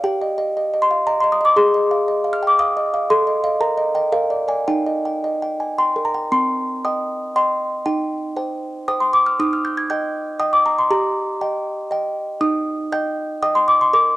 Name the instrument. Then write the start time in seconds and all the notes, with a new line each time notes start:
music box
0.04 G4 G5
0.22 D#5
0.38 D#5
0.57 D#5
0.74 D#5
0.82 C6
0.91 F5
1.07 D#5 A#5
1.20 D#5 C6
1.32 D#6
1.41 D#5
1.45 D6
1.56 G#4 C6
1.74 D#5
1.91 F5
2.08 D#5
2.24 F5
2.33 F6
2.43 G5
2.47 D6
2.59 F5 D#6
2.77 D#5
2.94 F5
3.10 A4 C6
3.27 D#5
3.44 D#5 F5
3.61 A#4 A#5
3.78 D#5
3.95 D#5 G5
4.12 A#4 F5
4.30 D5
4.48 D5 G#5
4.68 D#4 G5
4.86 D#5
5.05 G5
5.24 D#5
5.42 G5
5.60 G#5
5.78 G5 C6
5.96 A#4
6.05 A#5
6.14 G5
6.32 C4 C6
6.85 D#5 G5 D#6
7.36 D#5 G5 C6
7.86 D#4 G5
8.37 C5 G5
8.88 C5 G5 D#6
9.00 C6
9.13 D6
9.26 F6
9.40 D#4 D#6
9.53 F6
9.65 G6
9.77 G#6
9.90 D#5 G5 G6
10.39 D#5 G5 D#6
10.53 D6
10.66 A#5
10.78 C6
10.90 G4 A#5
11.41 D#5 G5
11.91 D#5 G5
12.41 D#4 D#6
12.92 D#5 G5 G6
13.43 D#5 G5 D#6
13.55 C6
13.68 D6
13.81 C6
13.93 A#4 D6